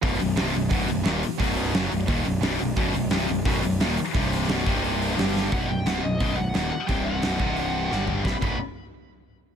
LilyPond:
<<
  \new Staff \with { instrumentName = "Lead electric guitar" } { \time 4/4 \tempo 4 = 175 r1 | r1 | r1 | r1 |
fis''8 g''8 fis''8 dis''8 dis''8 fis''4 fis''8 | g''8 fis''2. r8 | b''8 b''8 r2. | }
  \new Staff \with { instrumentName = "Distorted electric guitar" } { \clef bass \time 4/4 <b,, fis, b,>8 <b,, fis,>8 <c, g, c>8 <b,, fis,>8 <b,, fis, b,>8 <b,, fis,>8 <dis, ais, dis>8 r8 | <b,, fis, b,>4 <fis, cis fis>8 <b,, fis,>8 <dis, ais, dis>8 <b,, fis,>8 <b,, fis, b,>8 <b,, fis,>8 | <b,, fis, b,>8 <b,, fis,>8 <c, g, c>8 <b,, fis,>8 <b,, fis, b,>8 <b,, fis,>8 <dis, ais, dis>8 r8 | <c, g, c>4 <b,, fis, b,>8 <c, g, c>4. <g, d g>4 |
<b,, fis, b,>8 <b,, fis,>8 <c, g, c>8 <b,, fis,>8 <b,, fis, b,>8 <b,, fis,>8 <dis, ais, dis>8 r8 | <c, g, c>4 <b,, fis, b,>8 <c, g, c>4. <g, d g>4 | <b,, fis, b,>8 <b,, fis, b,>8 r2. | }
  \new Staff \with { instrumentName = "Distorted electric guitar" } { \clef bass \time 4/4 <b,, fis, b,>8 <b,, fis,>8 <c, g, c>8 <b,, fis,>8 <b,, fis, b,>8 <b,, fis,>8 <dis, ais, dis>8 r8 | <b,, fis, b,>4 <fis, cis fis>8 <b,, fis,>8 <dis, ais, dis>8 <b,, fis,>8 <b,, fis, b,>8 <b,, fis,>8 | <b,, fis, b,>8 <b,, fis,>8 <c, g, c>8 <b,, fis,>8 <b,, fis, b,>8 <b,, fis,>8 <dis, ais, dis>8 r8 | <c, g, c>4 <b,, fis, b,>8 <c, g, c>4. <g, d g>4 |
<b,, fis, b,>8 <b,, fis,>8 <c, g, c>8 <b,, fis,>8 <b,, fis, b,>8 <b,, fis,>8 <dis, ais, dis>8 r8 | <c, g, c>4 <b,, fis, b,>8 <c, g, c>4. <g, d g>4 | <b,, fis, b,>8 <b,, fis, b,>8 r2. | }
  \new Staff \with { instrumentName = "Picked electric bass" } { \clef bass \time 4/4 b,,,8 b,,,8 c,,8 b,,,8 b,,,8 b,,,8 dis,,8 r8 | b,,,4 fis,,8 b,,,8 dis,,8 b,,,8 b,,,8 b,,,8 | b,,,8 b,,,8 c,,8 b,,,8 b,,,8 b,,,8 dis,,8 r8 | c,,4 b,,,8 c,,4. g,,4 |
b,,,8 b,,,8 c,,8 b,,,8 b,,,8 b,,,8 dis,,8 r8 | c,,4 b,,,8 c,,4. g,,4 | b,,,8 b,,,8 r2. | }
  \new DrumStaff \with { instrumentName = "Drums" } \drummode { \time 4/4 <hho bd>8 hho8 <hho sn>8 hho8 <hho bd>8 hho8 <hho sn>8 hho8 | <hho bd>8 hho8 <hho sn>8 hho8 <hho bd>8 hho8 <hho sn>8 hho8 | <hho bd>8 hho8 <hho sn>8 hho8 <hho bd>8 hho8 <hho sn>8 hho8 | <hho bd>8 hho16 sn16 <hho sn>8 <hho bd>8 hho8 hho8 <hho sn>8 sn8 |
<hho bd>4 <hho sn>4 <hho bd>4 <hho sn>4 | <hho bd>4 <hho sn>8 bd8 hho4 sn8 tomfh8 | <bd sn>8 <cymc bd>8 r4 r4 r4 | }
>>